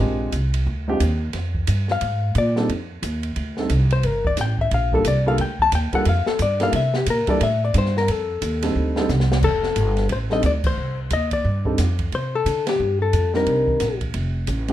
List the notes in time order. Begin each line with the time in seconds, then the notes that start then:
Already playing: G#3 C4 D4 F4 G4
0.00 A#1
0.32 C2, kick, hi-hat pedal, ride
0.54 ride
0.67 D2, kick
0.88 G#3 C4 D4 F4 G4
1.00 D#2, kick, hi-hat pedal, ride
1.33 F2, kick, snare, ride
1.55 kick
1.67 G2, kick, hi-hat pedal, ride
1.88 F5, snare
2.01 G#2, kick, ride
2.35 A#2 D5, kick, hi-hat pedal, ride
2.56 G3 C4 D4 D#4 A4, snare
2.69 F2, kick, ride
3.02 D#2, kick, hi-hat pedal, ride
3.23 ride
3.36 D2, kick, ride
3.57 G3 C4 D4 D#4 A4, snare
3.70 C2, kick, hi-hat pedal, ride
3.91 C5, ride
4.03 G1 A#4, kick, ride
4.25 D5, kick
4.37 A1, kick, snare, hi-hat pedal, ride
4.41 G5
4.58 E5, kick
4.71 A#1 F5, kick, ride
4.92 G3 A#3 D4 F4 A4, kick
5.05 C2 D5, hi-hat pedal, ride
5.26 G3 A#3 D4 F4 A4 F5
5.38 D2 G5, kick, ride
5.59 A5, kick
5.72 D#2 G5, kick, hi-hat pedal, ride
5.93 G3 A#3 D4 F4 A4 F#5, muted upright bass stroke, kick, ride
6.05 F2 F5, kick, ride
6.26 A4, muted upright bass stroke, snare
6.39 G2 D5, kick, hi-hat pedal, ride
6.60 G3 A#3 D4 E4 A4 F5, snare, ride
6.73 C3 E5, kick, ride
6.94 G4, snare
7.06 A#2 A#4, kick, hi-hat pedal, ride
7.27 G3 A#3 D4 E4 A4 D5, muted upright bass stroke, kick, ride
7.41 A2 E5, ride
7.65 D5
7.74 G2 C5, kick, hi-hat pedal, ride
7.86 snare
7.97 A#4, snare
8.08 F2 A4, kick, ride
8.42 D#2, kick, hi-hat pedal, ride
8.62 G3 C4 D4 D#4 A4, snare, ride
8.75 D2, kick
8.96 G3 C4 D4 D#4 A4, snare
9.09 C2, snare, hi-hat pedal
9.20 snare
9.32 snare
9.43 F1 A4, kick, crash
9.63 snare
9.76 G1, kick, hi-hat pedal, ride
9.97 snare, ride
10.09 A1 C5, kick, ride
10.30 G3 C4 D4 D#4 A4 D#5, snare
10.43 D2 D5, kick, hi-hat pedal, ride
10.64 C5, kick, crash
10.78 C2
11.10 D#2 D#5, kick, hi-hat pedal, ride
11.31 D5, kick, ride
11.45 G2, kick
11.65 G3 C4 D4 D#4 A4, kick
11.78 F2, snare, hi-hat pedal, ride
11.99 kick, ride
12.12 C3 C5, kick, ride
12.35 A4
12.46 D3, kick, hi-hat pedal, ride
12.67 G4, snare, ride
12.80 G2
13.02 A4
13.13 F2, kick, hi-hat pedal, ride
13.34 G3 C4 D4 D#4 A#4, snare
13.46 C2, kick, ride
13.68 kick
13.80 A#1, kick, snare, hi-hat pedal, ride
14.01 kick, ride
14.14 F1, kick, ride
14.47 A1, kick, hi-hat pedal, ride
14.68 G#3 C4 D4 F4 G4, ride